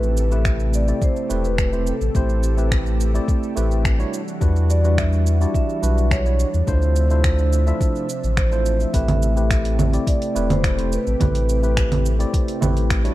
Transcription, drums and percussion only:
0.03 cabasa
0.17 cabasa
0.32 cabasa
0.45 finger snap, kick, cabasa
0.60 cabasa
0.73 cabasa
0.88 cabasa
1.02 kick, cabasa
1.16 cabasa
1.30 cabasa
1.45 cabasa
1.58 finger snap, kick, cabasa
1.73 cabasa
1.87 cabasa
2.01 cabasa
2.15 kick, cabasa
2.29 cabasa
2.43 cabasa
2.58 cabasa
2.71 finger snap, kick, cabasa
2.86 cabasa
3.00 cabasa
3.15 cabasa
3.28 kick, cabasa
3.43 cabasa
3.57 cabasa
3.71 cabasa
3.85 finger snap, kick, cabasa
4.00 cabasa
4.13 cabasa
4.28 cabasa
4.41 kick, cabasa
4.56 cabasa
4.70 cabasa
4.85 cabasa
4.98 finger snap, kick, cabasa
5.13 cabasa
5.26 cabasa
5.41 cabasa
5.54 kick, cabasa
5.70 cabasa
5.83 cabasa
5.98 cabasa
6.11 finger snap, kick, cabasa
6.26 cabasa
6.39 cabasa
6.54 cabasa
6.67 kick, cabasa
6.82 cabasa
6.96 cabasa
7.10 cabasa
7.24 finger snap, kick, cabasa
7.39 cabasa
7.53 cabasa
7.67 cabasa
7.81 kick, cabasa
7.96 cabasa
8.09 cabasa
8.24 cabasa
8.37 finger snap, kick, cabasa
8.52 cabasa
8.66 cabasa
8.80 cabasa
8.94 kick, open hi-hat, cabasa
9.08 open hi-hat, low conga, cabasa
9.22 cabasa
9.37 cabasa
9.50 finger snap, kick, open hi-hat, cabasa
9.65 open hi-hat, cabasa
9.79 low conga, cabasa
9.93 open hi-hat, cabasa
10.07 kick, open hi-hat, cabasa
10.22 open hi-hat, cabasa
10.36 cabasa
10.50 open hi-hat, low conga, cabasa
10.64 finger snap, kick, open hi-hat, cabasa
10.79 open hi-hat, cabasa
10.92 cabasa
11.07 cabasa
11.20 kick, open hi-hat, low conga, cabasa
11.35 open hi-hat, cabasa
11.49 cabasa
11.63 cabasa
11.77 finger snap, kick, open hi-hat, cabasa
11.92 open hi-hat, low conga, cabasa
12.06 cabasa
12.20 open hi-hat, cabasa
12.34 kick, open hi-hat, cabasa
12.48 open hi-hat, cabasa
12.62 low conga, cabasa
12.77 open hi-hat, cabasa
12.90 finger snap, kick, open hi-hat, cabasa
13.05 open hi-hat, cabasa

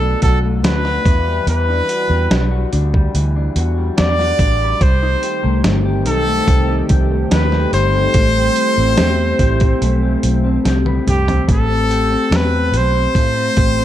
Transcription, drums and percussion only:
0.22 kick, closed hi-hat
0.64 snare, closed hi-hat
0.85 snare
1.06 kick, closed hi-hat
1.47 closed hi-hat
1.89 closed hi-hat
2.31 snare, closed hi-hat
2.73 closed hi-hat
2.94 kick
3.15 closed hi-hat
3.56 closed hi-hat
3.98 snare, closed hi-hat
4.19 snare
4.39 kick, closed hi-hat
4.81 kick, closed hi-hat
5.23 closed hi-hat
5.64 snare, closed hi-hat
6.06 closed hi-hat
6.48 kick, closed hi-hat
6.89 kick, closed hi-hat
7.31 snare, closed hi-hat
7.52 snare
7.73 closed hi-hat
8.14 kick, closed hi-hat
8.56 closed hi-hat
8.98 snare, closed hi-hat
9.39 kick, closed hi-hat
9.60 kick, closed hi-hat
9.82 closed hi-hat
10.23 closed hi-hat
10.65 snare, closed hi-hat
10.86 high tom
11.08 closed hi-hat, mid tom
11.28 closed hi-hat, floor tom
11.49 kick, closed hi-hat
11.91 closed hi-hat
12.32 snare, closed hi-hat
12.74 closed hi-hat
13.15 kick, closed hi-hat
13.57 kick, closed hi-hat

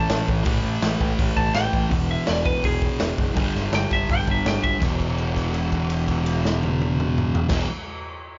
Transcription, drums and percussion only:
0.10 snare, open hi-hat
0.28 kick
0.45 kick, open hi-hat
0.82 snare, open hi-hat
1.01 kick
1.19 kick, open hi-hat
1.37 kick
1.55 snare, open hi-hat
1.73 kick
1.91 kick, open hi-hat
2.27 snare, open hi-hat
2.46 kick
2.64 kick, open hi-hat
2.82 kick
3.00 snare, open hi-hat
3.18 kick
3.37 kick, open hi-hat
3.55 snare
3.73 snare, open hi-hat
3.91 kick
4.10 kick, open hi-hat
4.19 snare
4.28 kick
4.46 snare, open hi-hat
4.64 kick
4.82 kick, crash
5.00 kick, crash
5.18 crash
5.36 kick, crash
5.54 crash
5.72 kick, crash
5.90 crash
6.08 kick, crash
6.26 crash
6.45 snare
6.63 high tom
6.82 high tom
7.00 mid tom
7.18 mid tom
7.35 floor tom
7.49 kick, snare, crash

